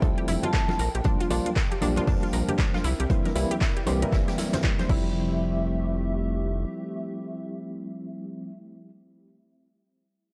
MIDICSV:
0, 0, Header, 1, 7, 480
1, 0, Start_track
1, 0, Key_signature, -1, "major"
1, 0, Tempo, 512821
1, 982, Time_signature, 4, 2, 24, 8
1, 9669, End_track
2, 0, Start_track
2, 0, Title_t, "Vibraphone"
2, 0, Program_c, 0, 11
2, 409, Note_on_c, 0, 81, 90
2, 801, Note_off_c, 0, 81, 0
2, 9669, End_track
3, 0, Start_track
3, 0, Title_t, "Analog synth pad"
3, 0, Program_c, 1, 89
3, 0, Note_on_c, 1, 64, 86
3, 0, Note_on_c, 1, 69, 77
3, 0, Note_on_c, 1, 79, 92
3, 705, Note_off_c, 1, 64, 0
3, 705, Note_off_c, 1, 69, 0
3, 741, Note_on_c, 1, 62, 83
3, 742, Note_on_c, 1, 70, 74
3, 2624, Note_off_c, 1, 79, 0
3, 2642, Note_off_c, 1, 62, 0
3, 2661, Note_on_c, 1, 60, 83
3, 2662, Note_on_c, 1, 76, 91
3, 4544, Note_off_c, 1, 70, 0
3, 4562, Note_off_c, 1, 60, 0
3, 4562, Note_off_c, 1, 76, 0
3, 4581, Note_on_c, 1, 57, 84
3, 4581, Note_on_c, 1, 67, 75
3, 4581, Note_on_c, 1, 76, 91
3, 7958, Note_off_c, 1, 57, 0
3, 7958, Note_off_c, 1, 67, 0
3, 7958, Note_off_c, 1, 76, 0
3, 9669, End_track
4, 0, Start_track
4, 0, Title_t, "Synth arpeggio sound"
4, 0, Program_c, 2, 84
4, 22, Note_on_c, 2, 69, 83
4, 124, Note_off_c, 2, 69, 0
4, 168, Note_on_c, 2, 67, 82
4, 234, Note_off_c, 2, 67, 0
4, 262, Note_on_c, 2, 64, 105
4, 330, Note_off_c, 2, 64, 0
4, 408, Note_on_c, 2, 65, 106
4, 452, Note_off_c, 2, 65, 0
4, 502, Note_on_c, 2, 64, 97
4, 570, Note_off_c, 2, 64, 0
4, 648, Note_on_c, 2, 65, 75
4, 714, Note_off_c, 2, 65, 0
4, 742, Note_on_c, 2, 70, 79
4, 844, Note_off_c, 2, 70, 0
4, 888, Note_on_c, 2, 67, 82
4, 954, Note_off_c, 2, 67, 0
4, 982, Note_on_c, 2, 62, 105
4, 1050, Note_off_c, 2, 62, 0
4, 1128, Note_on_c, 2, 65, 108
4, 1172, Note_off_c, 2, 65, 0
4, 1222, Note_on_c, 2, 62, 102
4, 1290, Note_off_c, 2, 62, 0
4, 1367, Note_on_c, 2, 65, 75
4, 1433, Note_off_c, 2, 65, 0
4, 1461, Note_on_c, 2, 70, 85
4, 1563, Note_off_c, 2, 70, 0
4, 1607, Note_on_c, 2, 67, 77
4, 1673, Note_off_c, 2, 67, 0
4, 1702, Note_on_c, 2, 62, 102
4, 1770, Note_off_c, 2, 62, 0
4, 1847, Note_on_c, 2, 65, 110
4, 1891, Note_off_c, 2, 65, 0
4, 1941, Note_on_c, 2, 62, 100
4, 2009, Note_off_c, 2, 62, 0
4, 2087, Note_on_c, 2, 65, 77
4, 2153, Note_off_c, 2, 65, 0
4, 2182, Note_on_c, 2, 70, 77
4, 2284, Note_off_c, 2, 70, 0
4, 2327, Note_on_c, 2, 67, 81
4, 2393, Note_off_c, 2, 67, 0
4, 2421, Note_on_c, 2, 62, 101
4, 2489, Note_off_c, 2, 62, 0
4, 2567, Note_on_c, 2, 65, 107
4, 2611, Note_off_c, 2, 65, 0
4, 2661, Note_on_c, 2, 64, 105
4, 2729, Note_off_c, 2, 64, 0
4, 2807, Note_on_c, 2, 67, 82
4, 2873, Note_off_c, 2, 67, 0
4, 2902, Note_on_c, 2, 72, 87
4, 3004, Note_off_c, 2, 72, 0
4, 3047, Note_on_c, 2, 70, 79
4, 3113, Note_off_c, 2, 70, 0
4, 3141, Note_on_c, 2, 64, 103
4, 3209, Note_off_c, 2, 64, 0
4, 3286, Note_on_c, 2, 67, 101
4, 3331, Note_off_c, 2, 67, 0
4, 3380, Note_on_c, 2, 64, 109
4, 3449, Note_off_c, 2, 64, 0
4, 3526, Note_on_c, 2, 67, 81
4, 3593, Note_off_c, 2, 67, 0
4, 3620, Note_on_c, 2, 72, 77
4, 3723, Note_off_c, 2, 72, 0
4, 3766, Note_on_c, 2, 70, 79
4, 3833, Note_off_c, 2, 70, 0
4, 3861, Note_on_c, 2, 64, 103
4, 3929, Note_off_c, 2, 64, 0
4, 4006, Note_on_c, 2, 67, 103
4, 4051, Note_off_c, 2, 67, 0
4, 4101, Note_on_c, 2, 64, 77
4, 4169, Note_off_c, 2, 64, 0
4, 4247, Note_on_c, 2, 72, 81
4, 4291, Note_off_c, 2, 72, 0
4, 4341, Note_on_c, 2, 64, 84
4, 4382, Note_off_c, 2, 64, 0
4, 4487, Note_on_c, 2, 72, 107
4, 4531, Note_off_c, 2, 72, 0
4, 4581, Note_on_c, 2, 64, 94
4, 5028, Note_off_c, 2, 64, 0
4, 9669, End_track
5, 0, Start_track
5, 0, Title_t, "Tine electric piano"
5, 0, Program_c, 3, 4
5, 0, Note_on_c, 3, 53, 93
5, 0, Note_on_c, 3, 55, 85
5, 0, Note_on_c, 3, 57, 85
5, 0, Note_on_c, 3, 60, 89
5, 0, Note_on_c, 3, 64, 105
5, 727, Note_off_c, 3, 53, 0
5, 729, Note_off_c, 3, 55, 0
5, 730, Note_off_c, 3, 57, 0
5, 732, Note_off_c, 3, 60, 0
5, 733, Note_off_c, 3, 64, 0
5, 978, Note_on_c, 3, 53, 100
5, 980, Note_on_c, 3, 55, 86
5, 981, Note_on_c, 3, 58, 84
5, 983, Note_on_c, 3, 62, 90
5, 984, Note_on_c, 3, 65, 109
5, 1197, Note_off_c, 3, 53, 0
5, 1198, Note_off_c, 3, 55, 0
5, 1199, Note_off_c, 3, 58, 0
5, 1199, Note_off_c, 3, 62, 0
5, 1200, Note_off_c, 3, 65, 0
5, 1218, Note_on_c, 3, 53, 98
5, 1220, Note_on_c, 3, 55, 91
5, 1221, Note_on_c, 3, 58, 91
5, 1223, Note_on_c, 3, 62, 92
5, 1225, Note_on_c, 3, 65, 115
5, 1394, Note_off_c, 3, 53, 0
5, 1395, Note_off_c, 3, 55, 0
5, 1396, Note_off_c, 3, 58, 0
5, 1396, Note_off_c, 3, 62, 0
5, 1397, Note_off_c, 3, 65, 0
5, 1698, Note_on_c, 3, 53, 107
5, 1700, Note_on_c, 3, 55, 95
5, 1701, Note_on_c, 3, 58, 97
5, 1703, Note_on_c, 3, 62, 99
5, 1705, Note_on_c, 3, 67, 113
5, 1824, Note_off_c, 3, 53, 0
5, 1824, Note_off_c, 3, 55, 0
5, 1825, Note_off_c, 3, 58, 0
5, 1826, Note_off_c, 3, 62, 0
5, 1827, Note_off_c, 3, 67, 0
5, 1841, Note_on_c, 3, 53, 100
5, 1844, Note_on_c, 3, 55, 90
5, 1847, Note_on_c, 3, 58, 85
5, 1851, Note_on_c, 3, 62, 91
5, 1854, Note_on_c, 3, 65, 107
5, 2647, Note_off_c, 3, 53, 0
5, 2649, Note_off_c, 3, 55, 0
5, 2650, Note_off_c, 3, 58, 0
5, 2652, Note_off_c, 3, 62, 0
5, 2654, Note_off_c, 3, 65, 0
5, 2898, Note_on_c, 3, 52, 98
5, 2900, Note_on_c, 3, 55, 88
5, 2901, Note_on_c, 3, 58, 90
5, 2903, Note_on_c, 3, 60, 86
5, 2904, Note_on_c, 3, 64, 102
5, 3117, Note_off_c, 3, 52, 0
5, 3118, Note_off_c, 3, 55, 0
5, 3119, Note_off_c, 3, 58, 0
5, 3120, Note_off_c, 3, 60, 0
5, 3120, Note_off_c, 3, 64, 0
5, 3138, Note_on_c, 3, 52, 97
5, 3140, Note_on_c, 3, 55, 94
5, 3142, Note_on_c, 3, 58, 89
5, 3143, Note_on_c, 3, 60, 96
5, 3145, Note_on_c, 3, 64, 112
5, 3314, Note_off_c, 3, 52, 0
5, 3315, Note_off_c, 3, 55, 0
5, 3316, Note_off_c, 3, 58, 0
5, 3317, Note_off_c, 3, 60, 0
5, 3317, Note_off_c, 3, 64, 0
5, 3618, Note_on_c, 3, 52, 105
5, 3620, Note_on_c, 3, 55, 94
5, 3622, Note_on_c, 3, 58, 94
5, 3623, Note_on_c, 3, 60, 95
5, 3625, Note_on_c, 3, 67, 117
5, 3743, Note_off_c, 3, 52, 0
5, 3744, Note_off_c, 3, 55, 0
5, 3745, Note_off_c, 3, 58, 0
5, 3746, Note_off_c, 3, 60, 0
5, 3747, Note_off_c, 3, 67, 0
5, 3760, Note_on_c, 3, 52, 97
5, 3763, Note_on_c, 3, 55, 89
5, 3766, Note_on_c, 3, 58, 86
5, 3770, Note_on_c, 3, 60, 91
5, 3773, Note_on_c, 3, 64, 110
5, 4565, Note_off_c, 3, 55, 0
5, 4572, Note_on_c, 3, 53, 86
5, 4575, Note_off_c, 3, 60, 0
5, 4576, Note_on_c, 3, 55, 84
5, 4578, Note_off_c, 3, 52, 0
5, 4579, Note_off_c, 3, 64, 0
5, 4581, Note_off_c, 3, 58, 0
5, 4581, Note_on_c, 3, 57, 77
5, 4586, Note_on_c, 3, 60, 82
5, 4590, Note_on_c, 3, 64, 98
5, 7949, Note_off_c, 3, 53, 0
5, 7953, Note_off_c, 3, 55, 0
5, 7958, Note_off_c, 3, 57, 0
5, 7963, Note_off_c, 3, 60, 0
5, 7967, Note_off_c, 3, 64, 0
5, 9669, End_track
6, 0, Start_track
6, 0, Title_t, "Analog synth bass"
6, 0, Program_c, 4, 38
6, 21, Note_on_c, 4, 36, 95
6, 110, Note_off_c, 4, 36, 0
6, 261, Note_on_c, 4, 29, 106
6, 350, Note_off_c, 4, 29, 0
6, 742, Note_on_c, 4, 34, 90
6, 831, Note_off_c, 4, 34, 0
6, 888, Note_on_c, 4, 34, 92
6, 945, Note_off_c, 4, 34, 0
6, 1222, Note_on_c, 4, 34, 100
6, 1311, Note_off_c, 4, 34, 0
6, 1701, Note_on_c, 4, 34, 86
6, 1868, Note_off_c, 4, 34, 0
6, 1941, Note_on_c, 4, 41, 92
6, 2030, Note_off_c, 4, 41, 0
6, 2181, Note_on_c, 4, 34, 99
6, 2270, Note_off_c, 4, 34, 0
6, 2662, Note_on_c, 4, 36, 89
6, 2750, Note_off_c, 4, 36, 0
6, 2807, Note_on_c, 4, 36, 91
6, 2865, Note_off_c, 4, 36, 0
6, 3141, Note_on_c, 4, 36, 97
6, 3230, Note_off_c, 4, 36, 0
6, 3620, Note_on_c, 4, 36, 87
6, 3787, Note_off_c, 4, 36, 0
6, 3860, Note_on_c, 4, 31, 90
6, 3950, Note_off_c, 4, 31, 0
6, 4581, Note_on_c, 4, 29, 98
6, 6224, Note_off_c, 4, 29, 0
6, 9669, End_track
7, 0, Start_track
7, 0, Title_t, "Drums"
7, 20, Note_on_c, 9, 42, 86
7, 22, Note_on_c, 9, 36, 114
7, 22, Note_on_c, 9, 62, 81
7, 114, Note_off_c, 9, 42, 0
7, 115, Note_off_c, 9, 36, 0
7, 116, Note_off_c, 9, 62, 0
7, 167, Note_on_c, 9, 42, 37
7, 259, Note_on_c, 9, 63, 71
7, 260, Note_off_c, 9, 42, 0
7, 262, Note_on_c, 9, 42, 75
7, 262, Note_on_c, 9, 46, 107
7, 353, Note_off_c, 9, 63, 0
7, 355, Note_off_c, 9, 46, 0
7, 356, Note_off_c, 9, 42, 0
7, 402, Note_on_c, 9, 64, 80
7, 407, Note_on_c, 9, 42, 67
7, 412, Note_on_c, 9, 62, 54
7, 495, Note_off_c, 9, 64, 0
7, 501, Note_off_c, 9, 42, 0
7, 501, Note_on_c, 9, 36, 109
7, 502, Note_on_c, 9, 42, 91
7, 503, Note_on_c, 9, 39, 121
7, 505, Note_off_c, 9, 62, 0
7, 505, Note_on_c, 9, 38, 126
7, 595, Note_off_c, 9, 36, 0
7, 595, Note_off_c, 9, 42, 0
7, 597, Note_off_c, 9, 39, 0
7, 598, Note_off_c, 9, 38, 0
7, 639, Note_on_c, 9, 63, 91
7, 645, Note_on_c, 9, 62, 77
7, 646, Note_on_c, 9, 38, 53
7, 733, Note_off_c, 9, 63, 0
7, 739, Note_off_c, 9, 62, 0
7, 739, Note_on_c, 9, 42, 69
7, 740, Note_off_c, 9, 38, 0
7, 741, Note_on_c, 9, 46, 105
7, 832, Note_off_c, 9, 42, 0
7, 835, Note_off_c, 9, 46, 0
7, 887, Note_on_c, 9, 42, 66
7, 972, Note_off_c, 9, 42, 0
7, 972, Note_on_c, 9, 42, 83
7, 978, Note_on_c, 9, 63, 91
7, 981, Note_on_c, 9, 36, 111
7, 988, Note_on_c, 9, 62, 53
7, 1066, Note_off_c, 9, 42, 0
7, 1071, Note_off_c, 9, 63, 0
7, 1075, Note_off_c, 9, 36, 0
7, 1082, Note_off_c, 9, 62, 0
7, 1127, Note_on_c, 9, 42, 58
7, 1133, Note_off_c, 9, 42, 0
7, 1133, Note_on_c, 9, 42, 45
7, 1221, Note_on_c, 9, 46, 99
7, 1221, Note_on_c, 9, 62, 88
7, 1223, Note_off_c, 9, 42, 0
7, 1223, Note_on_c, 9, 42, 72
7, 1314, Note_off_c, 9, 62, 0
7, 1315, Note_off_c, 9, 46, 0
7, 1317, Note_off_c, 9, 42, 0
7, 1363, Note_on_c, 9, 63, 63
7, 1364, Note_on_c, 9, 42, 47
7, 1367, Note_off_c, 9, 42, 0
7, 1367, Note_on_c, 9, 42, 71
7, 1457, Note_off_c, 9, 63, 0
7, 1461, Note_off_c, 9, 42, 0
7, 1461, Note_on_c, 9, 36, 105
7, 1463, Note_on_c, 9, 38, 114
7, 1463, Note_on_c, 9, 39, 122
7, 1465, Note_on_c, 9, 42, 88
7, 1555, Note_off_c, 9, 36, 0
7, 1556, Note_off_c, 9, 38, 0
7, 1557, Note_off_c, 9, 39, 0
7, 1559, Note_off_c, 9, 42, 0
7, 1603, Note_on_c, 9, 62, 55
7, 1606, Note_on_c, 9, 42, 56
7, 1696, Note_off_c, 9, 62, 0
7, 1698, Note_on_c, 9, 63, 91
7, 1700, Note_off_c, 9, 42, 0
7, 1701, Note_on_c, 9, 46, 102
7, 1705, Note_on_c, 9, 42, 75
7, 1792, Note_off_c, 9, 63, 0
7, 1795, Note_off_c, 9, 46, 0
7, 1798, Note_off_c, 9, 42, 0
7, 1837, Note_on_c, 9, 62, 80
7, 1840, Note_on_c, 9, 42, 47
7, 1844, Note_on_c, 9, 64, 82
7, 1847, Note_off_c, 9, 42, 0
7, 1847, Note_on_c, 9, 42, 73
7, 1931, Note_off_c, 9, 62, 0
7, 1937, Note_on_c, 9, 46, 85
7, 1938, Note_off_c, 9, 64, 0
7, 1941, Note_off_c, 9, 42, 0
7, 1941, Note_on_c, 9, 36, 116
7, 2031, Note_off_c, 9, 46, 0
7, 2035, Note_off_c, 9, 36, 0
7, 2087, Note_on_c, 9, 42, 37
7, 2177, Note_off_c, 9, 42, 0
7, 2177, Note_on_c, 9, 42, 72
7, 2178, Note_on_c, 9, 62, 54
7, 2180, Note_on_c, 9, 63, 63
7, 2181, Note_on_c, 9, 46, 104
7, 2271, Note_off_c, 9, 42, 0
7, 2271, Note_off_c, 9, 62, 0
7, 2273, Note_off_c, 9, 63, 0
7, 2275, Note_off_c, 9, 46, 0
7, 2325, Note_on_c, 9, 64, 83
7, 2326, Note_on_c, 9, 42, 70
7, 2419, Note_off_c, 9, 64, 0
7, 2420, Note_off_c, 9, 42, 0
7, 2420, Note_on_c, 9, 62, 79
7, 2421, Note_on_c, 9, 36, 108
7, 2422, Note_on_c, 9, 38, 107
7, 2422, Note_on_c, 9, 39, 120
7, 2426, Note_on_c, 9, 42, 91
7, 2514, Note_off_c, 9, 62, 0
7, 2515, Note_off_c, 9, 36, 0
7, 2515, Note_off_c, 9, 38, 0
7, 2515, Note_off_c, 9, 39, 0
7, 2520, Note_off_c, 9, 42, 0
7, 2568, Note_on_c, 9, 63, 86
7, 2570, Note_on_c, 9, 38, 42
7, 2661, Note_on_c, 9, 42, 64
7, 2661, Note_on_c, 9, 46, 105
7, 2662, Note_off_c, 9, 63, 0
7, 2663, Note_off_c, 9, 38, 0
7, 2754, Note_off_c, 9, 46, 0
7, 2755, Note_off_c, 9, 42, 0
7, 2805, Note_on_c, 9, 62, 49
7, 2806, Note_on_c, 9, 42, 71
7, 2899, Note_off_c, 9, 62, 0
7, 2899, Note_on_c, 9, 63, 89
7, 2900, Note_off_c, 9, 42, 0
7, 2901, Note_on_c, 9, 36, 118
7, 2901, Note_on_c, 9, 42, 88
7, 2993, Note_off_c, 9, 63, 0
7, 2995, Note_off_c, 9, 36, 0
7, 2995, Note_off_c, 9, 42, 0
7, 3046, Note_on_c, 9, 42, 59
7, 3048, Note_on_c, 9, 62, 74
7, 3055, Note_on_c, 9, 38, 41
7, 3140, Note_off_c, 9, 42, 0
7, 3141, Note_off_c, 9, 62, 0
7, 3141, Note_on_c, 9, 46, 99
7, 3144, Note_on_c, 9, 42, 74
7, 3149, Note_off_c, 9, 38, 0
7, 3235, Note_off_c, 9, 46, 0
7, 3238, Note_off_c, 9, 42, 0
7, 3287, Note_on_c, 9, 42, 75
7, 3289, Note_on_c, 9, 63, 64
7, 3380, Note_off_c, 9, 42, 0
7, 3381, Note_on_c, 9, 36, 107
7, 3381, Note_on_c, 9, 62, 54
7, 3383, Note_off_c, 9, 63, 0
7, 3383, Note_on_c, 9, 39, 121
7, 3383, Note_on_c, 9, 42, 87
7, 3386, Note_on_c, 9, 38, 113
7, 3475, Note_off_c, 9, 36, 0
7, 3475, Note_off_c, 9, 62, 0
7, 3476, Note_off_c, 9, 39, 0
7, 3476, Note_off_c, 9, 42, 0
7, 3479, Note_off_c, 9, 38, 0
7, 3526, Note_on_c, 9, 42, 56
7, 3617, Note_on_c, 9, 63, 93
7, 3620, Note_off_c, 9, 42, 0
7, 3620, Note_on_c, 9, 62, 93
7, 3621, Note_on_c, 9, 46, 100
7, 3625, Note_on_c, 9, 42, 68
7, 3711, Note_off_c, 9, 63, 0
7, 3714, Note_off_c, 9, 62, 0
7, 3715, Note_off_c, 9, 46, 0
7, 3719, Note_off_c, 9, 42, 0
7, 3767, Note_on_c, 9, 42, 74
7, 3768, Note_on_c, 9, 64, 89
7, 3860, Note_off_c, 9, 42, 0
7, 3861, Note_on_c, 9, 36, 116
7, 3862, Note_off_c, 9, 64, 0
7, 3862, Note_on_c, 9, 39, 37
7, 3862, Note_on_c, 9, 42, 74
7, 3866, Note_on_c, 9, 38, 103
7, 3955, Note_off_c, 9, 36, 0
7, 3956, Note_off_c, 9, 39, 0
7, 3956, Note_off_c, 9, 42, 0
7, 3960, Note_off_c, 9, 38, 0
7, 4005, Note_on_c, 9, 38, 111
7, 4007, Note_on_c, 9, 42, 39
7, 4007, Note_on_c, 9, 62, 56
7, 4010, Note_off_c, 9, 42, 0
7, 4010, Note_on_c, 9, 42, 81
7, 4098, Note_off_c, 9, 38, 0
7, 4098, Note_on_c, 9, 38, 117
7, 4100, Note_on_c, 9, 63, 62
7, 4101, Note_off_c, 9, 62, 0
7, 4101, Note_on_c, 9, 46, 105
7, 4104, Note_off_c, 9, 42, 0
7, 4104, Note_on_c, 9, 42, 89
7, 4192, Note_off_c, 9, 38, 0
7, 4193, Note_off_c, 9, 63, 0
7, 4195, Note_off_c, 9, 46, 0
7, 4198, Note_off_c, 9, 42, 0
7, 4243, Note_on_c, 9, 62, 79
7, 4244, Note_on_c, 9, 38, 99
7, 4246, Note_on_c, 9, 42, 89
7, 4247, Note_off_c, 9, 42, 0
7, 4247, Note_on_c, 9, 42, 70
7, 4247, Note_on_c, 9, 64, 81
7, 4331, Note_off_c, 9, 42, 0
7, 4331, Note_on_c, 9, 42, 96
7, 4335, Note_off_c, 9, 38, 0
7, 4335, Note_on_c, 9, 38, 115
7, 4336, Note_off_c, 9, 62, 0
7, 4340, Note_off_c, 9, 64, 0
7, 4341, Note_on_c, 9, 36, 108
7, 4342, Note_on_c, 9, 39, 127
7, 4425, Note_off_c, 9, 42, 0
7, 4429, Note_off_c, 9, 38, 0
7, 4435, Note_off_c, 9, 36, 0
7, 4436, Note_off_c, 9, 39, 0
7, 4483, Note_on_c, 9, 38, 58
7, 4484, Note_on_c, 9, 63, 98
7, 4487, Note_on_c, 9, 42, 39
7, 4577, Note_off_c, 9, 38, 0
7, 4577, Note_off_c, 9, 63, 0
7, 4580, Note_off_c, 9, 42, 0
7, 4581, Note_on_c, 9, 36, 116
7, 4581, Note_on_c, 9, 49, 89
7, 4582, Note_on_c, 9, 62, 51
7, 4675, Note_off_c, 9, 36, 0
7, 4675, Note_off_c, 9, 49, 0
7, 4676, Note_off_c, 9, 62, 0
7, 9669, End_track
0, 0, End_of_file